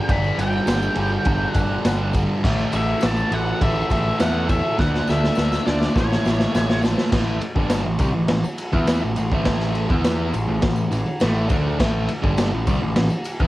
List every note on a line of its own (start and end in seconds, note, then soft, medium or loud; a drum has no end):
0.00 0.12 G5 medium
0.08 0.29 G1 loud
0.08 0.38 G2 loud
0.08 0.38 D3 loud
0.08 0.39 G3 loud
0.08 0.41 B5 loud
0.08 kick loud
0.08 ride loud
0.24 tambourine soft
0.38 0.58 G1 loud
0.38 0.66 G2 medium
0.38 0.67 D3 medium
0.38 0.67 G3 loud
0.38 1.50 G5 medium
0.38 ride medium
0.38 tambourine medium
0.53 tambourine soft
0.67 0.87 G1 medium
0.67 0.96 G2 medium
0.67 0.96 D3 medium
0.67 0.97 G3 loud
0.67 snare loud
0.67 ride loud
0.67 tambourine loud
0.82 tambourine medium
0.95 1.16 G1 loud
0.95 1.25 G2 medium
0.95 1.26 D3 medium
0.95 1.27 G3 medium
0.95 ride medium
1.25 1.46 G1 medium
1.25 1.54 G2 loud
1.25 1.55 D3 loud
1.25 1.55 G3 loud
1.25 kick loud
1.25 ride loud
1.50 2.12 F#5 medium
1.50 ride medium
1.55 1.75 G1 medium
1.55 1.84 G2 medium
1.55 1.84 D3 medium
1.55 1.85 G3 medium
1.55 kick medium
1.55 tambourine medium
1.85 2.25 G1 loud
1.85 2.13 G2 loud
1.85 2.13 D3 medium
1.85 2.15 G3 medium
1.85 snare loud
1.85 ride loud
1.85 tambourine loud
2.13 2.42 G2 loud
2.13 2.42 D3 medium
2.13 2.43 G3 loud
2.13 kick medium
2.13 ride medium
2.13 tambourine medium
2.44 2.64 A1 loud
2.44 2.72 A2 medium
2.44 2.72 E3 loud
2.44 2.74 A3 loud
2.44 kick loud
2.44 crash loud
2.58 tambourine soft
2.72 2.93 A1 loud
2.72 3.01 A2 medium
2.72 3.03 E3 loud
2.72 3.04 A3 loud
2.72 3.04 E5 medium
2.72 ride medium
2.72 tambourine medium
3.01 3.23 A1 medium
3.01 3.30 A2 medium
3.01 3.32 E3 medium
3.01 3.33 A3 medium
3.01 snare loud
3.01 ride loud
3.01 tambourine loud
3.06 3.34 A5 loud
3.17 tambourine medium
3.31 3.51 A1 loud
3.31 3.61 A2 medium
3.31 3.62 E3 medium
3.31 3.63 A3 medium
3.31 3.60 F#5 loud
3.31 ride medium
3.61 3.82 A1 medium
3.61 3.90 A2 loud
3.61 3.90 E3 loud
3.61 3.92 A3 loud
3.61 3.89 E5 loud
3.61 kick loud
3.61 ride loud
3.90 4.10 A1 loud
3.90 4.19 A2 medium
3.90 4.21 E3 medium
3.90 4.21 A3 medium
3.90 4.20 E5 loud
3.90 kick medium
3.90 ride medium
3.90 tambourine medium
4.20 4.60 E2 medium
4.20 4.47 A2 medium
4.20 4.48 E3 medium
4.20 4.49 A3 loud
4.20 4.49 F#5 loud
4.20 snare loud
4.20 ride loud
4.20 tambourine loud
4.48 4.76 A2 medium
4.48 4.77 E3 medium
4.48 4.80 A3 loud
4.48 4.79 E5 medium
4.48 kick medium
4.48 ride medium
4.48 tambourine medium
4.79 4.98 D2 loud
4.79 5.07 D3 loud
4.79 5.08 A3 medium
4.79 5.09 D4 loud
4.79 5.09 F#5 loud
4.79 kick loud
4.79 snare medium
4.79 tambourine soft
4.94 snare medium
5.07 5.28 D2 loud
5.07 5.35 D3 medium
5.07 5.36 A3 medium
5.07 5.38 D4 loud
5.07 5.69 E5 loud
5.07 snare medium
5.07 tambourine medium
5.24 snare medium
5.35 5.57 D2 medium
5.35 5.64 D3 medium
5.35 5.65 A3 medium
5.35 5.66 D4 loud
5.35 snare medium
5.35 tambourine loud
5.52 snare medium
5.52 tambourine medium
5.66 5.87 D2 loud
5.66 5.94 D3 medium
5.66 5.94 A3 medium
5.66 5.94 D4 medium
5.66 5.96 D5 medium
5.66 snare medium
5.66 tambourine soft
5.80 snare medium
5.80 tambourine soft
5.94 6.15 A1 medium
5.94 6.22 A2 loud
5.94 6.23 E3 loud
5.94 6.23 A3 loud
5.94 6.80 C#5 medium
5.94 kick loud
5.94 snare medium
5.94 tambourine soft
6.11 snare medium
6.11 tambourine soft
6.23 6.45 A1 medium
6.23 6.51 A2 medium
6.23 6.52 E3 medium
6.23 6.53 A3 medium
6.23 snare loud
6.23 tambourine medium
6.39 snare medium
6.39 tambourine soft
6.53 6.94 A1 medium
6.53 6.81 A2 medium
6.53 6.82 E3 medium
6.53 6.83 A3 loud
6.53 snare loud
6.53 tambourine loud
6.70 snare medium
6.82 7.10 A2 medium
6.82 7.10 E3 medium
6.82 7.11 A3 medium
6.82 snare loud
6.82 tambourine medium
6.97 snare medium
6.97 tambourine soft
7.11 7.40 A1 loud
7.11 7.40 A2 medium
7.11 7.40 E3 loud
7.11 7.41 A3 loud
7.11 kick loud
7.11 snare loud
7.11 crash loud
7.41 muted distorted electric guitar stroke medium
7.41 muted picked electric bass stroke soft
7.41 ride medium
7.55 7.83 G1 loud
7.55 7.84 G2 medium
7.55 7.85 D3 medium
7.55 7.85 G3 loud
7.55 kick loud
7.70 snare loud
7.70 ride loud
7.70 tambourine loud
7.85 7.99 A1 medium
7.85 7.99 A2 medium
7.85 8.00 E3 medium
7.99 8.14 C2 loud
7.99 8.13 C3 loud
7.99 8.14 G3 loud
7.99 kick loud
7.99 ride medium
7.99 tambourine medium
8.14 8.29 A1 medium
8.14 8.28 A2 medium
8.14 8.28 E3 medium
8.28 8.44 A1 medium
8.28 8.42 A2 medium
8.28 8.44 E3 medium
8.28 snare loud
8.28 ride loud
8.43 muted distorted electric guitar stroke medium
8.43 muted picked electric bass stroke soft
8.43 tambourine medium
8.58 ride medium
8.58 tambourine medium
8.72 9.01 E2 loud
8.72 9.01 E3 loud
8.72 9.02 B3 loud
8.72 9.02 E4 loud
8.72 kick loud
8.72 tambourine soft
8.87 snare loud
8.87 ride loud
8.87 tambourine loud
9.02 9.17 A1 medium
9.02 9.17 A2 medium
9.02 9.16 E3 medium
9.02 tambourine soft
9.16 9.31 A1 medium
9.16 9.31 A2 medium
9.16 9.31 E3 medium
9.16 ride medium
9.16 tambourine medium
9.32 9.86 A1 medium
9.32 9.89 A2 medium
9.32 9.88 E3 loud
9.32 9.90 A3 loud
9.32 kick loud
9.45 kick loud
9.45 snare loud
9.45 ride loud
9.75 ride medium
9.89 10.31 E2 loud
9.89 10.33 E3 medium
9.89 10.33 B3 medium
9.89 10.34 E4 loud
9.89 kick loud
10.04 snare loud
10.04 ride loud
10.04 tambourine loud
10.34 10.47 A1 medium
10.34 10.47 A2 medium
10.34 10.48 E3 medium
10.34 ride medium
10.34 tambourine medium
10.48 10.62 A1 medium
10.48 10.60 A2 medium
10.48 10.61 E3 medium
10.62 10.91 A1 medium
10.62 10.86 A2 medium
10.62 10.86 E3 medium
10.62 kick loud
10.62 snare loud
10.62 ride loud
10.76 tambourine medium
10.91 11.06 A1 medium
10.91 11.05 A2 medium
10.91 11.07 E3 medium
10.91 ride medium
10.91 tambourine medium
11.06 muted distorted electric guitar stroke medium
11.06 muted picked electric bass stroke soft
11.06 tambourine soft
11.20 11.49 A1 loud
11.20 11.48 A2 loud
11.20 11.49 E3 loud
11.20 11.48 A3 loud
11.20 snare loud
11.20 ride loud
11.20 tambourine medium
11.36 tambourine soft
11.48 11.78 D2 loud
11.48 11.78 D3 medium
11.48 11.79 A3 loud
11.48 11.79 D4 loud
11.48 kick loud
11.48 ride medium
11.48 tambourine medium
11.79 12.07 A1 loud
11.79 12.08 A2 loud
11.79 12.09 E3 loud
11.79 12.09 A3 loud
11.79 kick loud
11.79 snare loud
11.79 crash loud
12.09 muted distorted electric guitar stroke medium
12.09 ride medium
12.22 12.51 G1 loud
12.22 12.52 G2 loud
12.22 12.52 D3 loud
12.22 12.52 G3 loud
12.22 kick loud
12.38 snare loud
12.38 ride loud
12.38 tambourine loud
12.53 12.67 A1 medium
12.53 12.68 A2 medium
12.53 12.68 E3 medium
12.67 12.81 C2 loud
12.67 12.82 C3 medium
12.67 12.82 G3 loud
12.67 kick loud
12.67 ride medium
12.67 tambourine medium
12.82 12.96 A1 medium
12.82 12.96 A2 medium
12.82 12.97 E3 medium
12.96 13.11 A1 medium
12.96 13.11 A2 medium
12.96 13.12 E3 medium
12.96 snare loud
12.96 ride loud
13.10 muted distorted electric guitar stroke medium
13.10 tambourine medium
13.24 ride medium
13.24 tambourine medium
13.39 13.47 E2 medium
13.39 13.47 E3 loud
13.39 13.47 B3 loud
13.39 13.47 E4 loud
13.39 kick loud
13.39 tambourine soft